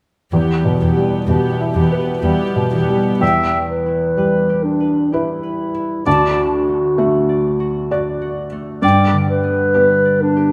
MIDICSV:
0, 0, Header, 1, 8, 480
1, 0, Start_track
1, 0, Key_signature, 1, "minor"
1, 0, Tempo, 961538
1, 160, Time_signature, 3, 2, 24, 8
1, 2557, Tempo, 923077
1, 5365, End_track
2, 0, Start_track
2, 0, Title_t, "Flute section"
2, 0, Program_c, 0, 73
2, 1603, Note_on_c, 0, 79, 33
2, 1830, Note_off_c, 0, 79, 0
2, 3047, Note_on_c, 0, 81, 34
2, 3269, Note_off_c, 0, 81, 0
2, 4488, Note_on_c, 0, 79, 40
2, 4707, Note_off_c, 0, 79, 0
2, 5365, End_track
3, 0, Start_track
3, 0, Title_t, "Oboe"
3, 0, Program_c, 1, 68
3, 1605, Note_on_c, 1, 76, 35
3, 1791, Note_off_c, 1, 76, 0
3, 3047, Note_on_c, 1, 74, 42
3, 3227, Note_off_c, 1, 74, 0
3, 4483, Note_on_c, 1, 74, 43
3, 4663, Note_off_c, 1, 74, 0
3, 5365, End_track
4, 0, Start_track
4, 0, Title_t, "Clarinet"
4, 0, Program_c, 2, 71
4, 1842, Note_on_c, 2, 71, 53
4, 2317, Note_on_c, 2, 62, 45
4, 2325, Note_off_c, 2, 71, 0
4, 2560, Note_on_c, 2, 64, 40
4, 2568, Note_off_c, 2, 62, 0
4, 3044, Note_off_c, 2, 64, 0
4, 3047, Note_on_c, 2, 66, 50
4, 4227, Note_off_c, 2, 66, 0
4, 4725, Note_on_c, 2, 71, 64
4, 5208, Note_on_c, 2, 62, 54
4, 5216, Note_off_c, 2, 71, 0
4, 5365, Note_off_c, 2, 62, 0
4, 5365, End_track
5, 0, Start_track
5, 0, Title_t, "Harp"
5, 0, Program_c, 3, 46
5, 159, Note_on_c, 3, 52, 27
5, 286, Note_on_c, 3, 55, 22
5, 403, Note_on_c, 3, 64, 23
5, 523, Note_on_c, 3, 71, 25
5, 641, Note_on_c, 3, 67, 28
5, 760, Note_on_c, 3, 76, 27
5, 872, Note_off_c, 3, 67, 0
5, 878, Note_on_c, 3, 67, 30
5, 992, Note_off_c, 3, 71, 0
5, 998, Note_on_c, 3, 71, 31
5, 1106, Note_off_c, 3, 64, 0
5, 1112, Note_on_c, 3, 64, 31
5, 1233, Note_off_c, 3, 55, 0
5, 1239, Note_on_c, 3, 55, 27
5, 1354, Note_off_c, 3, 64, 0
5, 1360, Note_on_c, 3, 64, 29
5, 1477, Note_off_c, 3, 55, 0
5, 1483, Note_on_c, 3, 55, 24
5, 1600, Note_off_c, 3, 52, 0
5, 1606, Note_on_c, 3, 52, 35
5, 1763, Note_off_c, 3, 55, 0
5, 1769, Note_on_c, 3, 55, 27
5, 1921, Note_off_c, 3, 64, 0
5, 1927, Note_on_c, 3, 64, 28
5, 2081, Note_off_c, 3, 71, 0
5, 2087, Note_on_c, 3, 71, 28
5, 2236, Note_off_c, 3, 67, 0
5, 2242, Note_on_c, 3, 67, 28
5, 2392, Note_off_c, 3, 71, 0
5, 2398, Note_on_c, 3, 71, 27
5, 2552, Note_off_c, 3, 67, 0
5, 2558, Note_on_c, 3, 67, 29
5, 2712, Note_off_c, 3, 71, 0
5, 2713, Note_off_c, 3, 76, 0
5, 2718, Note_on_c, 3, 71, 29
5, 2875, Note_off_c, 3, 64, 0
5, 2881, Note_on_c, 3, 64, 28
5, 3048, Note_on_c, 3, 50, 38
5, 3062, Note_off_c, 3, 71, 0
5, 3063, Note_off_c, 3, 64, 0
5, 3064, Note_off_c, 3, 52, 0
5, 3064, Note_off_c, 3, 55, 0
5, 3064, Note_off_c, 3, 67, 0
5, 3206, Note_on_c, 3, 62, 30
5, 3371, Note_on_c, 3, 57, 27
5, 3527, Note_on_c, 3, 66, 32
5, 3685, Note_on_c, 3, 74, 32
5, 3838, Note_off_c, 3, 66, 0
5, 3845, Note_on_c, 3, 66, 34
5, 4004, Note_off_c, 3, 74, 0
5, 4010, Note_on_c, 3, 74, 34
5, 4159, Note_off_c, 3, 66, 0
5, 4166, Note_on_c, 3, 66, 32
5, 4318, Note_off_c, 3, 57, 0
5, 4324, Note_on_c, 3, 57, 31
5, 4479, Note_on_c, 3, 43, 42
5, 4502, Note_off_c, 3, 57, 0
5, 4502, Note_off_c, 3, 66, 0
5, 4505, Note_off_c, 3, 50, 0
5, 4639, Note_on_c, 3, 50, 32
5, 4799, Note_on_c, 3, 59, 31
5, 4958, Note_on_c, 3, 67, 35
5, 5114, Note_off_c, 3, 74, 0
5, 5120, Note_on_c, 3, 74, 37
5, 5234, Note_off_c, 3, 62, 0
5, 5277, Note_off_c, 3, 67, 0
5, 5283, Note_on_c, 3, 67, 37
5, 5365, Note_off_c, 3, 43, 0
5, 5365, Note_off_c, 3, 50, 0
5, 5365, Note_off_c, 3, 59, 0
5, 5365, Note_off_c, 3, 67, 0
5, 5365, Note_off_c, 3, 74, 0
5, 5365, End_track
6, 0, Start_track
6, 0, Title_t, "Viola section"
6, 0, Program_c, 4, 48
6, 162, Note_on_c, 4, 59, 28
6, 164, Note_on_c, 4, 67, 28
6, 397, Note_off_c, 4, 59, 0
6, 398, Note_off_c, 4, 67, 0
6, 403, Note_on_c, 4, 59, 24
6, 404, Note_on_c, 4, 67, 25
6, 636, Note_off_c, 4, 59, 0
6, 636, Note_off_c, 4, 67, 0
6, 643, Note_on_c, 4, 67, 28
6, 644, Note_on_c, 4, 59, 30
6, 870, Note_off_c, 4, 67, 0
6, 871, Note_off_c, 4, 59, 0
6, 877, Note_on_c, 4, 67, 31
6, 878, Note_on_c, 4, 59, 32
6, 1099, Note_off_c, 4, 67, 0
6, 1101, Note_off_c, 4, 59, 0
6, 1105, Note_on_c, 4, 67, 35
6, 1107, Note_on_c, 4, 59, 34
6, 1349, Note_off_c, 4, 67, 0
6, 1350, Note_off_c, 4, 59, 0
6, 1361, Note_on_c, 4, 59, 34
6, 1361, Note_on_c, 4, 67, 33
6, 1603, Note_off_c, 4, 67, 0
6, 1604, Note_off_c, 4, 59, 0
6, 5365, End_track
7, 0, Start_track
7, 0, Title_t, "Felt piano"
7, 0, Program_c, 5, 0
7, 167, Note_on_c, 5, 40, 26
7, 246, Control_c, 5, 64, 127
7, 324, Note_on_c, 5, 47, 21
7, 480, Note_on_c, 5, 55, 22
7, 578, Note_off_c, 5, 47, 0
7, 644, Note_on_c, 5, 47, 27
7, 732, Note_off_c, 5, 55, 0
7, 800, Note_on_c, 5, 64, 26
7, 891, Note_off_c, 5, 47, 0
7, 958, Note_on_c, 5, 71, 30
7, 1048, Note_off_c, 5, 64, 0
7, 1114, Note_on_c, 5, 55, 30
7, 1209, Note_off_c, 5, 71, 0
7, 1277, Note_on_c, 5, 47, 25
7, 1375, Note_off_c, 5, 55, 0
7, 1441, Note_on_c, 5, 55, 27
7, 1543, Note_off_c, 5, 47, 0
7, 1590, Note_off_c, 5, 40, 0
7, 1603, Note_on_c, 5, 40, 30
7, 1606, Note_off_c, 5, 55, 0
7, 1615, Control_c, 5, 64, 0
7, 1703, Control_c, 5, 64, 127
7, 2083, Note_on_c, 5, 55, 28
7, 2563, Note_on_c, 5, 64, 26
7, 2564, Note_on_c, 5, 71, 29
7, 2850, Note_off_c, 5, 55, 0
7, 3023, Note_off_c, 5, 40, 0
7, 3027, Note_off_c, 5, 64, 0
7, 3027, Note_off_c, 5, 71, 0
7, 3048, Note_on_c, 5, 38, 33
7, 3054, Control_c, 5, 64, 0
7, 3135, Control_c, 5, 64, 127
7, 3524, Note_on_c, 5, 57, 31
7, 4008, Note_on_c, 5, 74, 33
7, 4009, Note_on_c, 5, 66, 29
7, 4293, Note_off_c, 5, 57, 0
7, 4463, Note_off_c, 5, 66, 0
7, 4463, Note_off_c, 5, 74, 0
7, 4464, Note_off_c, 5, 38, 0
7, 4481, Note_on_c, 5, 43, 39
7, 4494, Control_c, 5, 64, 0
7, 4589, Control_c, 5, 64, 127
7, 4961, Note_on_c, 5, 59, 34
7, 5365, Note_off_c, 5, 43, 0
7, 5365, Note_off_c, 5, 59, 0
7, 5365, End_track
8, 0, Start_track
8, 0, Title_t, "Cello section"
8, 0, Program_c, 6, 48
8, 161, Note_on_c, 6, 40, 29
8, 200, Note_off_c, 6, 40, 0
8, 408, Note_on_c, 6, 40, 29
8, 448, Note_off_c, 6, 40, 0
8, 637, Note_on_c, 6, 40, 35
8, 677, Note_off_c, 6, 40, 0
8, 873, Note_on_c, 6, 40, 38
8, 913, Note_off_c, 6, 40, 0
8, 1112, Note_on_c, 6, 40, 41
8, 1152, Note_off_c, 6, 40, 0
8, 1355, Note_on_c, 6, 40, 37
8, 1395, Note_off_c, 6, 40, 0
8, 5365, End_track
0, 0, End_of_file